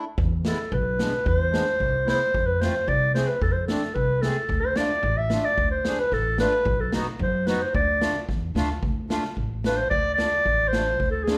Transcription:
0.18 0.50 E2 loud
0.18 kick loud
0.45 0.58 G#3 medium
0.45 0.59 B3 medium
0.45 0.59 E4 medium
0.45 0.71 A4 medium
0.45 snare medium
0.72 1.04 B1 loud
0.72 1.28 B4 medium
0.72 kick medium
0.99 1.13 G#3 medium
0.99 1.13 B3 medium
0.99 1.13 D4 medium
0.99 snare medium
1.26 1.58 E2 loud
1.26 2.07 C5 loud
1.26 kick medium
1.52 1.66 G#3 medium
1.52 1.66 B3 medium
1.52 1.66 D4 medium
1.52 snare medium
1.80 2.12 C2 medium
1.80 kick medium
2.06 2.20 G#3 medium
2.06 2.20 B3 medium
2.06 2.20 E4 medium
2.06 2.48 C5 loud
2.06 snare medium
2.34 2.67 F2 medium
2.34 kick medium
2.46 2.62 B4 medium
2.61 2.75 A3 medium
2.61 2.75 C4 medium
2.61 2.75 F4 medium
2.61 2.89 C5 medium
2.61 snare medium
2.88 3.20 C2 loud
2.88 3.13 D5 loud
2.88 kick medium
3.14 3.29 A3 medium
3.14 3.29 C4 medium
3.14 3.29 G#4 medium
3.14 3.29 C5 medium
3.14 snare medium
3.28 3.41 B4 medium
3.41 3.74 F2 medium
3.41 3.54 A4 medium
3.41 kick medium
3.52 3.66 C5 medium
3.67 3.83 A3 medium
3.67 3.83 C4 medium
3.67 3.83 D4 medium
3.67 3.96 A4 medium
3.67 snare medium
3.82 snare soft
3.94 4.28 C2 medium
3.94 4.23 B4 medium
3.94 kick medium
4.22 4.36 A3 medium
4.22 4.37 C4 medium
4.22 4.37 G#4 medium
4.22 4.62 A4 loud
4.22 snare medium
4.49 4.81 D2 medium
4.49 kick medium
4.61 4.78 C5 medium
4.76 4.91 A3 medium
4.76 4.91 D4 medium
4.76 4.91 F4 medium
4.76 5.19 D5 medium
4.76 snare loud
5.03 5.35 A1 loud
5.03 kick medium
5.17 5.46 E5 medium
5.30 5.45 A3 medium
5.30 5.45 D4 medium
5.30 5.45 F4 medium
5.30 snare medium
5.45 5.70 D5 medium
5.58 5.90 D2 medium
5.58 kick medium
5.71 6.00 C5 medium
5.85 5.99 A3 medium
5.85 5.99 D4 medium
5.85 5.99 G#4 medium
5.85 snare medium
5.99 6.14 B4 loud
6.12 6.45 A1 medium
6.12 6.39 A4 loud
6.12 kick medium
6.12 snare soft
6.38 6.53 A3 medium
6.38 6.53 D4 medium
6.38 6.53 F4 medium
6.38 6.82 B4 loud
6.38 snare medium
6.65 6.98 B1 loud
6.65 kick medium
6.80 6.93 A4 medium
6.93 7.07 B3 medium
6.93 7.07 D#4 medium
6.93 7.07 F#4 medium
6.93 snare loud
7.19 7.52 F#2 loud
7.19 7.48 C5 medium
7.19 kick medium
7.47 7.61 B3 medium
7.47 7.61 D#4 medium
7.47 7.62 F#4 medium
7.47 7.63 B4 medium
7.47 snare medium
7.62 7.74 C5 medium
7.74 8.07 D2 loud
7.74 8.25 D5 medium
7.74 kick medium
8.01 8.15 A3 medium
8.01 8.15 D4 medium
8.01 8.15 F4 medium
8.01 snare medium
8.29 8.53 E2 medium
8.29 kick medium
8.29 snare soft
8.55 8.80 D2 medium
8.55 8.70 A3 medium
8.55 8.70 D4 medium
8.55 8.70 F4 medium
8.55 snare medium
8.83 9.15 D2 medium
8.83 kick medium
9.10 9.24 A3 medium
9.10 9.24 D4 medium
9.10 9.24 F4 medium
9.10 snare medium
9.24 snare soft
9.37 9.91 A1 medium
9.37 kick medium
9.64 9.78 A3 medium
9.64 9.79 D4 medium
9.64 9.79 F4 medium
9.64 9.79 B4 medium
9.64 snare medium
9.77 9.89 C5 medium
9.90 10.24 D2 medium
9.90 10.14 D5 loud
9.90 kick medium
10.14 10.69 D5 loud
10.18 10.33 A3 medium
10.18 10.33 D4 medium
10.18 10.33 F4 medium
10.18 snare medium
10.45 11.00 A1 medium
10.45 kick medium
10.68 11.10 C5 loud
10.73 10.87 A3 medium
10.73 10.87 D4 medium
10.73 10.87 F4 medium
10.73 snare medium
11.00 11.33 D2 medium
11.00 kick medium
11.11 11.25 A4 medium
11.24 11.38 G#4 medium
11.24 snare loud
11.28 11.38 A3 medium
11.28 11.38 D4 medium
11.28 11.38 F4 medium

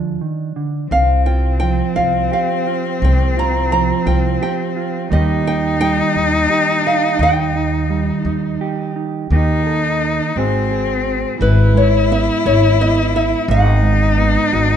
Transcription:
0.00 0.16 D2 medium
0.00 0.21 D3 medium
0.00 0.21 F3 soft
0.00 0.92 D4 soft
0.00 0.18 D5 medium
0.21 0.56 D#3 soft
0.56 0.91 D3 medium
0.91 1.80 C2 medium
0.91 1.61 C3 medium
0.91 5.08 C4 medium
0.91 1.26 F5 medium
1.26 1.96 F4 soft
1.26 1.58 G5 medium
1.60 3.70 F3 medium
1.60 1.95 G5 medium
1.96 2.27 C2 medium
1.96 2.66 F4 soft
1.96 2.32 F5 medium
2.32 4.41 G4 medium
2.32 2.65 F5 medium
2.67 2.98 F4 soft
3.01 3.90 C2 medium
3.01 3.71 C3 medium
3.01 3.39 G5 medium
3.37 4.05 F4 soft
3.37 3.71 A#5 medium
3.71 5.11 F3 medium
3.71 4.06 A#5 medium
4.06 4.36 C2 medium
4.06 4.75 F4 soft
4.06 4.39 G5 medium
4.41 5.13 G4 medium
4.41 4.75 G5 medium
4.76 5.07 F4 medium
5.10 6.00 D#2 medium
5.10 7.20 D#3 medium
5.10 5.80 G3 medium
5.10 9.30 A#3 medium
5.10 8.92 D#4 loud
5.10 5.45 D#4 medium
5.10 6.49 G4 medium
5.10 5.48 D#5 medium
5.45 6.16 D#4 soft
5.45 5.79 G5 medium
5.80 7.89 G3 medium
5.80 6.86 G5 medium
6.16 6.45 D#2 medium
6.16 6.85 D#4 soft
6.50 8.60 G4 medium
6.86 7.55 D#4 medium
6.86 7.22 F5 medium
7.19 8.09 D#2 loud
7.19 9.27 D#3 medium
7.19 8.58 G5 medium
7.55 8.25 D#4 soft
7.90 9.27 G3 medium
8.25 8.55 D#2 medium
8.25 8.95 D#4 medium
8.61 9.32 G4 medium
8.96 9.27 D#4 medium
9.30 10.19 D#2 medium
9.30 10.31 D#3 medium
9.30 10.35 A#3 medium
9.30 10.32 D#4 medium
9.30 10.38 D#4 loud
9.30 9.66 G4 medium
9.66 10.31 A4 medium
10.36 11.23 G#1 medium
10.36 11.36 G#2 medium
10.36 11.39 C4 medium
10.36 11.36 C4 medium
10.36 11.36 F#4 medium
10.36 10.70 G#4 medium
10.71 11.36 G#4 medium
11.39 12.28 G#1 loud
11.39 13.49 G#2 medium
11.39 13.50 E4 medium
11.39 11.73 B4 medium
11.74 13.82 G#3 medium
11.74 12.11 C#5 medium
12.11 12.80 B3 medium
12.11 12.46 E5 medium
12.46 13.33 G#1 medium
12.46 13.13 E4 medium
12.46 12.77 C#5 medium
12.80 14.17 B3 medium
12.80 13.16 D#5 medium
13.14 13.44 E4 medium
13.14 13.50 E5 medium
13.48 14.36 G#1 loud
13.48 14.77 G#2 medium
13.48 14.77 D#4 loud
13.48 14.77 F#5 loud
13.82 14.77 G#3 medium
14.18 14.77 B3 medium
14.53 14.77 G#1 medium
14.53 14.77 F#4 medium

